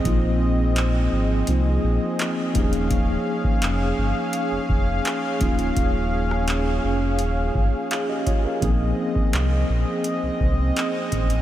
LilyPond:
<<
  \new Staff \with { instrumentName = "Analog synth pad" } { \time 4/4 \key bes \minor \tempo 4 = 84 << { <c' ees''>2.~ <c' ees''>8 <des' f''>8~ | <des' f''>1~ | <des' f''>1 | <c' ees''>1 | } \\ { aes'1~ | aes'1~ | aes'1~ | aes'1 | } >> }
  \new Staff \with { instrumentName = "Tine electric piano" } { \time 4/4 \key bes \minor << { r1 | r1 | r2. <aes' f''>16 <g' ees''>16 <f' des''>16 <des' bes'>16~ | <des' bes'>16 r2. r8. | } \\ { <f bes c' ees' f'>2 <f bes c' ees' f'>4. <f bes des' ees' g' aes'>8~ | <f bes des' ees' g' aes'>2.~ <f bes des' ees' g' aes'>8 <f bes des' ees' f'>8~ | <f bes des' ees' f'>2.~ <f bes des' ees' f'>8 r8 | <f bes c' ees' aes'>1 | } >> }
  \new Staff \with { instrumentName = "Sub bass" } { \clef bass \time 4/4 \key bes \minor bes,,4. aes,,8 c,8 bes,,16 r8. ees,,8~ | ees,,8 r8 f,,8 g,,16 r8 f,,16 f,,8 r8 d,,8 | ees,,4. f,,8 ees,,8 g,,16 r4 r16 | bes,,8 r8 c,8 bes,,16 r8 c,16 c,8 r8 a,,8 | }
  \new DrumStaff \with { instrumentName = "Drums" } \drummode { \time 4/4 <hh bd>4 <hc hh>4 hh4 <hc hh>8 <hh bd>16 hh16 | <hh bd>8. bd16 <hc hh>4 hh8 bd8 <hc hh>8 <hh bd>16 hh16 | <hh bd>8. ss16 <hc hh>4 hh8 bd8 <hc hh>8 <hh bd>8 | <hh bd>8. bd16 <hc hh>4 hh8 bd8 <hc hh>8 <hh bd>16 hh16 | }
>>